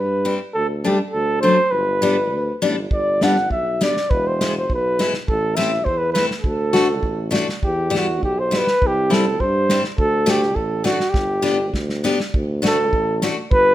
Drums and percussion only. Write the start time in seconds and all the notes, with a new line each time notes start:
2.91 kick
3.21 snare
3.36 snare
3.51 kick
3.81 snare
3.97 snare
4.11 kick
4.41 snare
4.70 kick
5.00 snare
5.14 snare
5.28 kick
5.59 snare
5.74 snare
5.86 kick
6.16 snare
6.31 snare
6.44 kick
6.75 snare
7.03 kick
7.34 snare
7.49 snare
7.63 kick
7.95 snare
8.23 kick
8.53 snare
8.67 snare
8.82 kick
9.12 snare
9.40 kick
9.69 snare
9.84 snare
9.98 kick
10.27 snare
10.42 snare
10.56 kick
10.85 snare
11.00 snare
11.14 kick, snare
11.45 snare
11.74 kick, snare
11.89 snare
12.05 snare
12.20 snare
12.34 kick
12.65 snare
12.93 kick
13.23 snare
13.51 kick